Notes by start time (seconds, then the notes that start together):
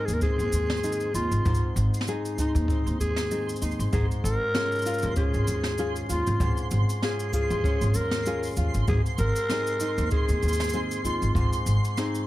Already playing: G#2 C4 D#4 G#4 C6
0.05 D#2 G#4, cabasa
0.14 A#4
0.21 C4 G#4, kick, cabasa
0.39 D#2, cabasa
0.52 D#2, cabasa
0.70 snare, cabasa
0.77 cabasa
0.83 C4 D#4 G#4, cabasa
0.92 cabasa
1.00 cabasa
1.14 D#2 D#4 F4, cabasa
1.31 G#1, cabasa
1.45 G#1 G#2, kick, cabasa
1.55 cabasa
1.76 G#1, cabasa
1.94 cabasa
2.01 snare
2.07 C4 D#4 G#4, cabasa
2.25 cabasa
2.38 D#4, kick, cabasa
2.55 D#2, cabasa
2.68 C4, kick, cabasa
2.86 D#2, cabasa
3.00 D#2 G#4, cabasa
3.16 snare, cabasa
3.31 C4 D#4 G#4, cabasa
3.49 cabasa
3.56 cabasa
3.62 D#2 D#4, cabasa
3.71 cabasa
3.79 G#1, cabasa
3.93 G#1 G#2 G#4, kick, cabasa
4.11 cabasa
4.24 G#1 A#4, cabasa
4.54 C#4 F4 G#4, snare, cabasa
4.72 cabasa
4.75 cabasa
4.79 cabasa
4.82 cabasa
4.85 F4, cabasa
4.90 cabasa
4.94 cabasa
4.98 cabasa
5.02 D#2, cabasa
5.16 C#4 G#4, kick, cabasa
5.34 G#1, cabasa
5.47 D#2, cabasa
5.63 snare, cabasa
5.78 C#4 F4 G#4, cabasa
5.96 cabasa
6.09 D#2 F4, cabasa
6.27 G#1, cabasa
6.40 G#1 G#2, kick, cabasa
6.57 cabasa
6.71 G#1, cabasa
6.89 cabasa
7.03 C#4 F4 G#4, snare, cabasa
7.20 cabasa
7.33 F4 G#4, kick, cabasa
7.50 D#2, cabasa
7.64 C#4, kick, cabasa
7.81 G#1, cabasa
7.94 D#2 A#4, cabasa
8.11 snare, cabasa
8.26 C#4 F4 G#4, cabasa
8.43 cabasa
8.45 cabasa
8.47 cabasa
8.48 cabasa
8.51 cabasa
8.53 cabasa
8.55 F4, cabasa
8.57 D#2, cabasa
8.74 G#1, cabasa
8.88 G#1 G#2 G#4, kick, cabasa
9.06 cabasa
9.18 G#1 A#4, cabasa
9.36 cabasa
9.49 C4 D#4 G#4, snare, cabasa
9.67 cabasa
9.80 D#4, cabasa
9.98 D#2, cabasa
10.11 C4 G#4, kick, cabasa
10.29 D#2, cabasa
10.43 D#2, cabasa
10.48 cabasa
10.53 cabasa
10.60 snare, cabasa
10.64 cabasa
10.69 cabasa
10.73 C4 D#4 G#4, cabasa
10.91 cabasa
11.04 D#2 D#4 F4, cabasa
11.22 G#1, cabasa
11.35 G#1 G#2, kick, cabasa
11.53 cabasa
11.66 G#1, cabasa
11.85 cabasa
11.97 C4 D#4 G#4, snare, cabasa
12.15 cabasa